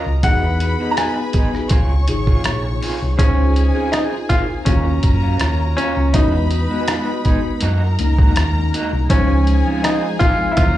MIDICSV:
0, 0, Header, 1, 9, 480
1, 0, Start_track
1, 0, Key_signature, -5, "major"
1, 0, Tempo, 738916
1, 154, Time_signature, 4, 2, 24, 8
1, 6999, End_track
2, 0, Start_track
2, 0, Title_t, "String section"
2, 0, Program_c, 0, 48
2, 0, Note_on_c, 0, 70, 81
2, 0, Note_on_c, 0, 82, 85
2, 136, Note_off_c, 0, 70, 0
2, 136, Note_off_c, 0, 82, 0
2, 156, Note_on_c, 0, 71, 76
2, 156, Note_on_c, 0, 83, 90
2, 1095, Note_off_c, 0, 71, 0
2, 1095, Note_off_c, 0, 83, 0
2, 1106, Note_on_c, 0, 85, 79
2, 1107, Note_on_c, 0, 73, 78
2, 2050, Note_off_c, 0, 85, 0
2, 2051, Note_off_c, 0, 73, 0
2, 2067, Note_on_c, 0, 80, 87
2, 2069, Note_on_c, 0, 68, 84
2, 3011, Note_off_c, 0, 68, 0
2, 3011, Note_off_c, 0, 80, 0
2, 3028, Note_on_c, 0, 82, 89
2, 3031, Note_on_c, 0, 70, 75
2, 3971, Note_off_c, 0, 82, 0
2, 3973, Note_off_c, 0, 70, 0
2, 3993, Note_on_c, 0, 71, 82
2, 3994, Note_on_c, 0, 83, 90
2, 4933, Note_off_c, 0, 71, 0
2, 4934, Note_off_c, 0, 83, 0
2, 4947, Note_on_c, 0, 82, 93
2, 4949, Note_on_c, 0, 70, 78
2, 5889, Note_off_c, 0, 82, 0
2, 5891, Note_off_c, 0, 70, 0
2, 5916, Note_on_c, 0, 68, 82
2, 5916, Note_on_c, 0, 80, 93
2, 6854, Note_off_c, 0, 68, 0
2, 6854, Note_off_c, 0, 80, 0
2, 6877, Note_on_c, 0, 82, 90
2, 6881, Note_on_c, 0, 70, 83
2, 6999, Note_off_c, 0, 70, 0
2, 6999, Note_off_c, 0, 82, 0
2, 6999, End_track
3, 0, Start_track
3, 0, Title_t, "Vibraphone"
3, 0, Program_c, 1, 11
3, 2071, Note_on_c, 1, 72, 60
3, 2242, Note_on_c, 1, 75, 42
3, 2684, Note_off_c, 1, 72, 0
3, 2820, Note_off_c, 1, 75, 0
3, 3517, Note_on_c, 1, 73, 60
3, 4126, Note_off_c, 1, 73, 0
3, 6999, End_track
4, 0, Start_track
4, 0, Title_t, "Grand piano"
4, 0, Program_c, 2, 0
4, 0, Note_on_c, 2, 75, 77
4, 154, Note_on_c, 2, 78, 94
4, 167, Note_off_c, 2, 75, 0
4, 566, Note_off_c, 2, 78, 0
4, 593, Note_on_c, 2, 82, 71
4, 634, Note_off_c, 2, 82, 0
4, 635, Note_on_c, 2, 80, 72
4, 1808, Note_off_c, 2, 80, 0
4, 2069, Note_on_c, 2, 61, 82
4, 2546, Note_on_c, 2, 63, 85
4, 2566, Note_off_c, 2, 61, 0
4, 2601, Note_off_c, 2, 63, 0
4, 2789, Note_on_c, 2, 65, 94
4, 2843, Note_off_c, 2, 65, 0
4, 3022, Note_on_c, 2, 61, 75
4, 3722, Note_off_c, 2, 61, 0
4, 3746, Note_on_c, 2, 61, 83
4, 3986, Note_on_c, 2, 63, 82
4, 3997, Note_off_c, 2, 61, 0
4, 5403, Note_off_c, 2, 63, 0
4, 5914, Note_on_c, 2, 61, 83
4, 6366, Note_off_c, 2, 61, 0
4, 6391, Note_on_c, 2, 63, 72
4, 6622, Note_on_c, 2, 65, 92
4, 6638, Note_off_c, 2, 63, 0
4, 6830, Note_off_c, 2, 65, 0
4, 6830, Note_on_c, 2, 64, 64
4, 6867, Note_on_c, 2, 65, 86
4, 6871, Note_off_c, 2, 64, 0
4, 6999, Note_off_c, 2, 65, 0
4, 6999, End_track
5, 0, Start_track
5, 0, Title_t, "Clean electric guitar"
5, 0, Program_c, 3, 27
5, 151, Note_on_c, 3, 56, 64
5, 157, Note_on_c, 3, 63, 67
5, 162, Note_on_c, 3, 66, 63
5, 267, Note_off_c, 3, 56, 0
5, 270, Note_off_c, 3, 63, 0
5, 272, Note_off_c, 3, 66, 0
5, 521, Note_on_c, 3, 66, 53
5, 526, Note_on_c, 3, 63, 50
5, 529, Note_on_c, 3, 56, 42
5, 598, Note_off_c, 3, 66, 0
5, 601, Note_off_c, 3, 63, 0
5, 602, Note_off_c, 3, 56, 0
5, 631, Note_on_c, 3, 56, 60
5, 636, Note_on_c, 3, 63, 72
5, 641, Note_on_c, 3, 66, 71
5, 746, Note_off_c, 3, 56, 0
5, 749, Note_off_c, 3, 63, 0
5, 751, Note_off_c, 3, 66, 0
5, 866, Note_on_c, 3, 56, 56
5, 872, Note_on_c, 3, 63, 57
5, 877, Note_on_c, 3, 68, 64
5, 959, Note_off_c, 3, 56, 0
5, 962, Note_off_c, 3, 63, 0
5, 965, Note_off_c, 3, 68, 0
5, 1104, Note_on_c, 3, 60, 67
5, 1111, Note_on_c, 3, 65, 63
5, 1116, Note_on_c, 3, 68, 69
5, 1223, Note_off_c, 3, 60, 0
5, 1226, Note_off_c, 3, 65, 0
5, 1229, Note_off_c, 3, 68, 0
5, 1478, Note_on_c, 3, 68, 46
5, 1483, Note_on_c, 3, 65, 47
5, 1488, Note_on_c, 3, 60, 40
5, 1557, Note_off_c, 3, 68, 0
5, 1559, Note_off_c, 3, 65, 0
5, 1562, Note_off_c, 3, 60, 0
5, 1829, Note_on_c, 3, 60, 72
5, 1834, Note_on_c, 3, 65, 70
5, 1839, Note_on_c, 3, 68, 76
5, 1946, Note_off_c, 3, 60, 0
5, 1948, Note_off_c, 3, 65, 0
5, 1950, Note_off_c, 3, 68, 0
5, 2063, Note_on_c, 3, 60, 68
5, 2068, Note_on_c, 3, 65, 67
5, 2073, Note_on_c, 3, 68, 73
5, 2182, Note_off_c, 3, 60, 0
5, 2185, Note_off_c, 3, 65, 0
5, 2187, Note_off_c, 3, 68, 0
5, 2435, Note_on_c, 3, 68, 62
5, 2442, Note_on_c, 3, 65, 53
5, 2447, Note_on_c, 3, 60, 45
5, 2515, Note_off_c, 3, 68, 0
5, 2519, Note_off_c, 3, 65, 0
5, 2521, Note_off_c, 3, 60, 0
5, 2547, Note_on_c, 3, 60, 67
5, 2554, Note_on_c, 3, 65, 71
5, 2557, Note_on_c, 3, 68, 69
5, 2664, Note_off_c, 3, 60, 0
5, 2668, Note_off_c, 3, 65, 0
5, 2669, Note_off_c, 3, 68, 0
5, 2786, Note_on_c, 3, 60, 54
5, 2793, Note_on_c, 3, 65, 55
5, 2798, Note_on_c, 3, 70, 60
5, 2879, Note_off_c, 3, 60, 0
5, 2882, Note_off_c, 3, 65, 0
5, 2885, Note_off_c, 3, 70, 0
5, 3026, Note_on_c, 3, 54, 66
5, 3031, Note_on_c, 3, 61, 76
5, 3035, Note_on_c, 3, 65, 73
5, 3144, Note_off_c, 3, 54, 0
5, 3146, Note_off_c, 3, 61, 0
5, 3148, Note_off_c, 3, 65, 0
5, 3396, Note_on_c, 3, 65, 55
5, 3402, Note_on_c, 3, 61, 45
5, 3406, Note_on_c, 3, 54, 41
5, 3475, Note_off_c, 3, 65, 0
5, 3478, Note_off_c, 3, 61, 0
5, 3481, Note_off_c, 3, 54, 0
5, 3741, Note_on_c, 3, 54, 77
5, 3746, Note_on_c, 3, 61, 76
5, 3752, Note_on_c, 3, 65, 77
5, 3861, Note_off_c, 3, 54, 0
5, 3864, Note_off_c, 3, 61, 0
5, 3866, Note_off_c, 3, 65, 0
5, 3984, Note_on_c, 3, 56, 66
5, 3988, Note_on_c, 3, 63, 64
5, 3993, Note_on_c, 3, 66, 74
5, 4103, Note_off_c, 3, 56, 0
5, 4104, Note_off_c, 3, 63, 0
5, 4107, Note_off_c, 3, 66, 0
5, 4358, Note_on_c, 3, 66, 54
5, 4362, Note_on_c, 3, 63, 50
5, 4368, Note_on_c, 3, 56, 47
5, 4436, Note_off_c, 3, 66, 0
5, 4438, Note_off_c, 3, 63, 0
5, 4441, Note_off_c, 3, 56, 0
5, 4465, Note_on_c, 3, 56, 73
5, 4472, Note_on_c, 3, 63, 64
5, 4475, Note_on_c, 3, 66, 83
5, 4589, Note_off_c, 3, 66, 0
5, 4598, Note_off_c, 3, 63, 0
5, 4607, Note_off_c, 3, 56, 0
5, 4707, Note_on_c, 3, 56, 60
5, 4716, Note_on_c, 3, 63, 63
5, 4718, Note_on_c, 3, 68, 62
5, 4799, Note_off_c, 3, 56, 0
5, 4803, Note_off_c, 3, 63, 0
5, 4805, Note_off_c, 3, 68, 0
5, 4947, Note_on_c, 3, 58, 70
5, 4954, Note_on_c, 3, 63, 80
5, 4957, Note_on_c, 3, 66, 85
5, 5064, Note_off_c, 3, 58, 0
5, 5067, Note_off_c, 3, 63, 0
5, 5069, Note_off_c, 3, 66, 0
5, 5320, Note_on_c, 3, 66, 60
5, 5324, Note_on_c, 3, 63, 47
5, 5330, Note_on_c, 3, 58, 49
5, 5397, Note_off_c, 3, 66, 0
5, 5399, Note_off_c, 3, 63, 0
5, 5402, Note_off_c, 3, 58, 0
5, 5670, Note_on_c, 3, 58, 58
5, 5676, Note_on_c, 3, 63, 66
5, 5680, Note_on_c, 3, 66, 68
5, 5785, Note_off_c, 3, 58, 0
5, 5788, Note_off_c, 3, 63, 0
5, 5790, Note_off_c, 3, 66, 0
5, 5907, Note_on_c, 3, 56, 66
5, 5913, Note_on_c, 3, 60, 80
5, 5919, Note_on_c, 3, 65, 74
5, 6024, Note_off_c, 3, 56, 0
5, 6026, Note_off_c, 3, 60, 0
5, 6030, Note_off_c, 3, 65, 0
5, 6281, Note_on_c, 3, 65, 59
5, 6286, Note_on_c, 3, 60, 52
5, 6291, Note_on_c, 3, 56, 46
5, 6357, Note_off_c, 3, 65, 0
5, 6360, Note_off_c, 3, 60, 0
5, 6362, Note_off_c, 3, 56, 0
5, 6388, Note_on_c, 3, 56, 75
5, 6396, Note_on_c, 3, 60, 76
5, 6399, Note_on_c, 3, 65, 79
5, 6504, Note_off_c, 3, 56, 0
5, 6507, Note_off_c, 3, 60, 0
5, 6509, Note_off_c, 3, 65, 0
5, 6632, Note_on_c, 3, 56, 61
5, 6639, Note_on_c, 3, 60, 64
5, 6642, Note_on_c, 3, 68, 62
5, 6721, Note_off_c, 3, 56, 0
5, 6724, Note_off_c, 3, 60, 0
5, 6726, Note_off_c, 3, 68, 0
5, 6870, Note_on_c, 3, 54, 65
5, 6874, Note_on_c, 3, 61, 78
5, 6880, Note_on_c, 3, 65, 71
5, 6985, Note_off_c, 3, 54, 0
5, 6986, Note_off_c, 3, 61, 0
5, 6989, Note_off_c, 3, 65, 0
5, 6999, End_track
6, 0, Start_track
6, 0, Title_t, "Tine electric piano"
6, 0, Program_c, 4, 4
6, 0, Control_c, 4, 64, 127
6, 0, Note_on_c, 4, 61, 68
6, 0, Note_on_c, 4, 65, 69
6, 0, Note_on_c, 4, 66, 57
6, 0, Note_on_c, 4, 70, 75
6, 66, Note_off_c, 4, 65, 0
6, 67, Note_off_c, 4, 66, 0
6, 70, Note_off_c, 4, 70, 0
6, 150, Note_on_c, 4, 59, 74
6, 153, Note_on_c, 4, 63, 70
6, 158, Note_on_c, 4, 66, 72
6, 161, Note_on_c, 4, 68, 89
6, 163, Control_c, 4, 64, 0
6, 168, Note_off_c, 4, 61, 0
6, 262, Control_c, 4, 64, 127
6, 483, Note_off_c, 4, 59, 0
6, 484, Note_off_c, 4, 63, 0
6, 487, Note_off_c, 4, 66, 0
6, 488, Note_off_c, 4, 68, 0
6, 518, Note_on_c, 4, 59, 57
6, 522, Note_on_c, 4, 63, 58
6, 527, Note_on_c, 4, 66, 62
6, 531, Note_on_c, 4, 68, 71
6, 838, Note_off_c, 4, 59, 0
6, 840, Note_off_c, 4, 63, 0
6, 842, Note_off_c, 4, 66, 0
6, 844, Note_off_c, 4, 68, 0
6, 864, Note_on_c, 4, 59, 53
6, 869, Note_on_c, 4, 63, 51
6, 873, Note_on_c, 4, 66, 47
6, 878, Note_on_c, 4, 68, 61
6, 1109, Note_off_c, 4, 59, 0
6, 1111, Note_off_c, 4, 63, 0
6, 1113, Note_off_c, 4, 66, 0
6, 1116, Note_off_c, 4, 68, 0
6, 1122, Control_c, 4, 64, 0
6, 1241, Control_c, 4, 64, 127
6, 1346, Note_on_c, 4, 48, 79
6, 1350, Note_on_c, 4, 63, 74
6, 1356, Note_on_c, 4, 65, 74
6, 1356, Note_on_c, 4, 68, 88
6, 2004, Note_off_c, 4, 48, 0
6, 2006, Note_off_c, 4, 63, 0
6, 2009, Note_off_c, 4, 65, 0
6, 2009, Note_off_c, 4, 68, 0
6, 2066, Note_on_c, 4, 72, 78
6, 2069, Note_on_c, 4, 63, 75
6, 2076, Note_on_c, 4, 65, 77
6, 2078, Note_on_c, 4, 68, 86
6, 2081, Control_c, 4, 64, 0
6, 2189, Control_c, 4, 64, 127
6, 2401, Note_off_c, 4, 72, 0
6, 2402, Note_off_c, 4, 63, 0
6, 2406, Note_off_c, 4, 65, 0
6, 2406, Note_off_c, 4, 68, 0
6, 2433, Note_on_c, 4, 60, 61
6, 2437, Note_on_c, 4, 63, 57
6, 2443, Note_on_c, 4, 65, 53
6, 2448, Note_on_c, 4, 68, 72
6, 2755, Note_off_c, 4, 60, 0
6, 2757, Note_off_c, 4, 63, 0
6, 2761, Note_off_c, 4, 65, 0
6, 2763, Note_off_c, 4, 68, 0
6, 2789, Note_on_c, 4, 60, 52
6, 2792, Note_on_c, 4, 63, 46
6, 2803, Note_on_c, 4, 68, 57
6, 3028, Note_on_c, 4, 58, 66
6, 3031, Note_off_c, 4, 60, 0
6, 3033, Note_off_c, 4, 63, 0
6, 3034, Note_on_c, 4, 61, 60
6, 3038, Note_off_c, 4, 68, 0
6, 3038, Note_on_c, 4, 65, 56
6, 3040, Note_on_c, 4, 66, 78
6, 3043, Control_c, 4, 64, 0
6, 3156, Control_c, 4, 64, 127
6, 3903, Note_off_c, 4, 58, 0
6, 3906, Note_off_c, 4, 61, 0
6, 3908, Note_off_c, 4, 65, 0
6, 3909, Note_off_c, 4, 66, 0
6, 3989, Note_on_c, 4, 56, 87
6, 3996, Note_on_c, 4, 59, 68
6, 3999, Note_on_c, 4, 63, 75
6, 4000, Note_on_c, 4, 66, 94
6, 4002, Control_c, 4, 64, 0
6, 4106, Control_c, 4, 64, 127
6, 4322, Note_off_c, 4, 56, 0
6, 4325, Note_off_c, 4, 59, 0
6, 4327, Note_off_c, 4, 63, 0
6, 4327, Note_off_c, 4, 66, 0
6, 4358, Note_on_c, 4, 56, 60
6, 4364, Note_on_c, 4, 59, 57
6, 4369, Note_on_c, 4, 63, 56
6, 4374, Note_on_c, 4, 66, 63
6, 4678, Note_off_c, 4, 56, 0
6, 4681, Note_off_c, 4, 59, 0
6, 4683, Note_off_c, 4, 63, 0
6, 4685, Note_off_c, 4, 66, 0
6, 4707, Note_on_c, 4, 56, 66
6, 4711, Note_on_c, 4, 59, 53
6, 4719, Note_on_c, 4, 63, 57
6, 4721, Note_on_c, 4, 66, 69
6, 4950, Note_off_c, 4, 56, 0
6, 4952, Note_off_c, 4, 59, 0
6, 4955, Note_off_c, 4, 63, 0
6, 4957, Note_off_c, 4, 66, 0
6, 4961, Control_c, 4, 64, 0
6, 5075, Control_c, 4, 64, 127
6, 5193, Note_on_c, 4, 56, 77
6, 5196, Note_on_c, 4, 58, 75
6, 5201, Note_on_c, 4, 61, 71
6, 5204, Note_on_c, 4, 63, 98
6, 5846, Note_off_c, 4, 56, 0
6, 5848, Note_off_c, 4, 58, 0
6, 5850, Note_off_c, 4, 61, 0
6, 5852, Note_off_c, 4, 63, 0
6, 5908, Note_on_c, 4, 53, 80
6, 5914, Note_on_c, 4, 56, 74
6, 5916, Note_on_c, 4, 72, 72
6, 5920, Control_c, 4, 64, 0
6, 5922, Note_on_c, 4, 63, 83
6, 6041, Control_c, 4, 64, 127
6, 6240, Note_off_c, 4, 53, 0
6, 6243, Note_off_c, 4, 56, 0
6, 6244, Note_off_c, 4, 72, 0
6, 6247, Note_off_c, 4, 63, 0
6, 6277, Note_on_c, 4, 53, 65
6, 6282, Note_on_c, 4, 56, 59
6, 6285, Note_on_c, 4, 60, 60
6, 6292, Note_on_c, 4, 63, 74
6, 6596, Note_off_c, 4, 53, 0
6, 6599, Note_off_c, 4, 56, 0
6, 6600, Note_off_c, 4, 60, 0
6, 6604, Note_off_c, 4, 63, 0
6, 6625, Note_on_c, 4, 56, 50
6, 6626, Note_on_c, 4, 53, 52
6, 6631, Note_on_c, 4, 60, 52
6, 6638, Note_on_c, 4, 63, 55
6, 6865, Note_on_c, 4, 54, 70
6, 6868, Note_off_c, 4, 53, 0
6, 6868, Note_off_c, 4, 56, 0
6, 6869, Note_on_c, 4, 58, 66
6, 6870, Note_off_c, 4, 60, 0
6, 6873, Note_on_c, 4, 61, 62
6, 6874, Note_off_c, 4, 63, 0
6, 6878, Control_c, 4, 64, 0
6, 6879, Note_on_c, 4, 65, 75
6, 6988, Control_c, 4, 64, 127
6, 6999, Note_off_c, 4, 54, 0
6, 6999, Note_off_c, 4, 58, 0
6, 6999, Note_off_c, 4, 61, 0
6, 6999, Note_off_c, 4, 65, 0
6, 6999, End_track
7, 0, Start_track
7, 0, Title_t, "Fingered electric bass"
7, 0, Program_c, 5, 33
7, 41, Note_on_c, 5, 37, 77
7, 137, Note_off_c, 5, 37, 0
7, 151, Note_on_c, 5, 40, 89
7, 472, Note_off_c, 5, 40, 0
7, 1108, Note_on_c, 5, 37, 80
7, 1318, Note_off_c, 5, 37, 0
7, 1352, Note_on_c, 5, 32, 68
7, 1591, Note_off_c, 5, 32, 0
7, 1591, Note_on_c, 5, 34, 73
7, 1799, Note_off_c, 5, 34, 0
7, 1964, Note_on_c, 5, 36, 71
7, 2059, Note_off_c, 5, 36, 0
7, 2071, Note_on_c, 5, 37, 94
7, 2391, Note_off_c, 5, 37, 0
7, 3032, Note_on_c, 5, 39, 82
7, 3240, Note_off_c, 5, 39, 0
7, 3270, Note_on_c, 5, 42, 78
7, 3479, Note_off_c, 5, 42, 0
7, 3510, Note_on_c, 5, 39, 75
7, 3719, Note_off_c, 5, 39, 0
7, 3876, Note_on_c, 5, 37, 75
7, 3974, Note_off_c, 5, 37, 0
7, 3989, Note_on_c, 5, 40, 84
7, 4310, Note_off_c, 5, 40, 0
7, 4952, Note_on_c, 5, 42, 94
7, 5160, Note_off_c, 5, 42, 0
7, 5195, Note_on_c, 5, 37, 76
7, 5401, Note_off_c, 5, 37, 0
7, 5434, Note_on_c, 5, 39, 86
7, 5640, Note_off_c, 5, 39, 0
7, 5800, Note_on_c, 5, 36, 77
7, 5896, Note_off_c, 5, 36, 0
7, 5910, Note_on_c, 5, 37, 97
7, 6230, Note_off_c, 5, 37, 0
7, 6872, Note_on_c, 5, 39, 86
7, 6999, Note_off_c, 5, 39, 0
7, 6999, End_track
8, 0, Start_track
8, 0, Title_t, "Muted clean electric guitar strokes"
8, 44, Note_on_c, 9, 29, 37
8, 109, Note_off_c, 9, 29, 0
8, 284, Note_on_c, 9, 29, 36
8, 349, Note_off_c, 9, 29, 0
8, 394, Note_on_c, 9, 29, 33
8, 459, Note_off_c, 9, 29, 0
8, 760, Note_on_c, 9, 29, 35
8, 825, Note_off_c, 9, 29, 0
8, 996, Note_on_c, 9, 29, 33
8, 1061, Note_off_c, 9, 29, 0
8, 1348, Note_on_c, 9, 29, 31
8, 1413, Note_off_c, 9, 29, 0
8, 1591, Note_on_c, 9, 29, 39
8, 1656, Note_off_c, 9, 29, 0
8, 1720, Note_on_c, 9, 29, 38
8, 1785, Note_off_c, 9, 29, 0
8, 1958, Note_on_c, 9, 29, 32
8, 2023, Note_off_c, 9, 29, 0
8, 2197, Note_on_c, 9, 29, 38
8, 2262, Note_off_c, 9, 29, 0
8, 2308, Note_on_c, 9, 29, 37
8, 2373, Note_off_c, 9, 29, 0
8, 2681, Note_on_c, 9, 29, 35
8, 2746, Note_off_c, 9, 29, 0
8, 2920, Note_on_c, 9, 29, 35
8, 2985, Note_off_c, 9, 29, 0
8, 3268, Note_on_c, 9, 29, 31
8, 3333, Note_off_c, 9, 29, 0
8, 3503, Note_on_c, 9, 29, 39
8, 3568, Note_off_c, 9, 29, 0
8, 3637, Note_on_c, 9, 29, 48
8, 3701, Note_off_c, 9, 29, 0
8, 3876, Note_on_c, 9, 29, 40
8, 3941, Note_off_c, 9, 29, 0
8, 4115, Note_on_c, 9, 29, 34
8, 4180, Note_off_c, 9, 29, 0
8, 4229, Note_on_c, 9, 29, 36
8, 4294, Note_off_c, 9, 29, 0
8, 4597, Note_on_c, 9, 29, 35
8, 4662, Note_off_c, 9, 29, 0
8, 4837, Note_on_c, 9, 29, 36
8, 4902, Note_off_c, 9, 29, 0
8, 5188, Note_on_c, 9, 29, 29
8, 5253, Note_off_c, 9, 29, 0
8, 5430, Note_on_c, 9, 29, 32
8, 5495, Note_off_c, 9, 29, 0
8, 5560, Note_on_c, 9, 29, 36
8, 5624, Note_off_c, 9, 29, 0
8, 5804, Note_on_c, 9, 29, 37
8, 5869, Note_off_c, 9, 29, 0
8, 6041, Note_on_c, 9, 29, 38
8, 6106, Note_off_c, 9, 29, 0
8, 6151, Note_on_c, 9, 29, 33
8, 6216, Note_off_c, 9, 29, 0
8, 6524, Note_on_c, 9, 29, 41
8, 6589, Note_off_c, 9, 29, 0
8, 6999, End_track
9, 0, Start_track
9, 0, Title_t, "Drums"
9, 151, Note_on_c, 9, 42, 94
9, 152, Note_on_c, 9, 36, 93
9, 216, Note_off_c, 9, 42, 0
9, 217, Note_off_c, 9, 36, 0
9, 392, Note_on_c, 9, 42, 58
9, 457, Note_off_c, 9, 42, 0
9, 631, Note_on_c, 9, 42, 71
9, 634, Note_on_c, 9, 37, 101
9, 696, Note_off_c, 9, 42, 0
9, 699, Note_off_c, 9, 37, 0
9, 866, Note_on_c, 9, 42, 61
9, 872, Note_on_c, 9, 36, 88
9, 931, Note_off_c, 9, 42, 0
9, 937, Note_off_c, 9, 36, 0
9, 1005, Note_on_c, 9, 37, 32
9, 1070, Note_off_c, 9, 37, 0
9, 1101, Note_on_c, 9, 42, 84
9, 1109, Note_on_c, 9, 36, 95
9, 1166, Note_off_c, 9, 42, 0
9, 1174, Note_off_c, 9, 36, 0
9, 1349, Note_on_c, 9, 42, 73
9, 1413, Note_off_c, 9, 42, 0
9, 1476, Note_on_c, 9, 36, 82
9, 1541, Note_off_c, 9, 36, 0
9, 1586, Note_on_c, 9, 42, 78
9, 1595, Note_on_c, 9, 37, 102
9, 1651, Note_off_c, 9, 42, 0
9, 1660, Note_off_c, 9, 37, 0
9, 1835, Note_on_c, 9, 46, 64
9, 1900, Note_off_c, 9, 46, 0
9, 2071, Note_on_c, 9, 36, 108
9, 2075, Note_on_c, 9, 42, 94
9, 2136, Note_off_c, 9, 36, 0
9, 2140, Note_off_c, 9, 42, 0
9, 2314, Note_on_c, 9, 42, 50
9, 2379, Note_off_c, 9, 42, 0
9, 2553, Note_on_c, 9, 42, 83
9, 2557, Note_on_c, 9, 37, 106
9, 2618, Note_off_c, 9, 42, 0
9, 2622, Note_off_c, 9, 37, 0
9, 2791, Note_on_c, 9, 42, 58
9, 2794, Note_on_c, 9, 36, 83
9, 2856, Note_off_c, 9, 42, 0
9, 2859, Note_off_c, 9, 36, 0
9, 3027, Note_on_c, 9, 42, 89
9, 3032, Note_on_c, 9, 36, 100
9, 3092, Note_off_c, 9, 42, 0
9, 3097, Note_off_c, 9, 36, 0
9, 3266, Note_on_c, 9, 42, 69
9, 3272, Note_on_c, 9, 36, 80
9, 3331, Note_off_c, 9, 42, 0
9, 3337, Note_off_c, 9, 36, 0
9, 3505, Note_on_c, 9, 42, 88
9, 3514, Note_on_c, 9, 37, 93
9, 3570, Note_off_c, 9, 42, 0
9, 3579, Note_off_c, 9, 37, 0
9, 3755, Note_on_c, 9, 42, 63
9, 3820, Note_off_c, 9, 42, 0
9, 3987, Note_on_c, 9, 42, 91
9, 3990, Note_on_c, 9, 36, 99
9, 4052, Note_off_c, 9, 42, 0
9, 4055, Note_off_c, 9, 36, 0
9, 4226, Note_on_c, 9, 42, 50
9, 4291, Note_off_c, 9, 42, 0
9, 4467, Note_on_c, 9, 42, 83
9, 4471, Note_on_c, 9, 37, 110
9, 4532, Note_off_c, 9, 42, 0
9, 4536, Note_off_c, 9, 37, 0
9, 4708, Note_on_c, 9, 42, 60
9, 4713, Note_on_c, 9, 36, 83
9, 4773, Note_off_c, 9, 42, 0
9, 4778, Note_off_c, 9, 36, 0
9, 4941, Note_on_c, 9, 42, 82
9, 5006, Note_off_c, 9, 42, 0
9, 5189, Note_on_c, 9, 42, 78
9, 5254, Note_off_c, 9, 42, 0
9, 5317, Note_on_c, 9, 36, 85
9, 5382, Note_off_c, 9, 36, 0
9, 5430, Note_on_c, 9, 42, 78
9, 5438, Note_on_c, 9, 37, 98
9, 5495, Note_off_c, 9, 42, 0
9, 5503, Note_off_c, 9, 37, 0
9, 5679, Note_on_c, 9, 42, 69
9, 5744, Note_off_c, 9, 42, 0
9, 5911, Note_on_c, 9, 36, 108
9, 5911, Note_on_c, 9, 42, 89
9, 5976, Note_off_c, 9, 36, 0
9, 5976, Note_off_c, 9, 42, 0
9, 6152, Note_on_c, 9, 42, 53
9, 6217, Note_off_c, 9, 42, 0
9, 6393, Note_on_c, 9, 42, 85
9, 6397, Note_on_c, 9, 37, 104
9, 6458, Note_off_c, 9, 42, 0
9, 6462, Note_off_c, 9, 37, 0
9, 6629, Note_on_c, 9, 42, 58
9, 6633, Note_on_c, 9, 36, 82
9, 6694, Note_off_c, 9, 42, 0
9, 6698, Note_off_c, 9, 36, 0
9, 6865, Note_on_c, 9, 42, 79
9, 6871, Note_on_c, 9, 36, 96
9, 6930, Note_off_c, 9, 42, 0
9, 6936, Note_off_c, 9, 36, 0
9, 6999, End_track
0, 0, End_of_file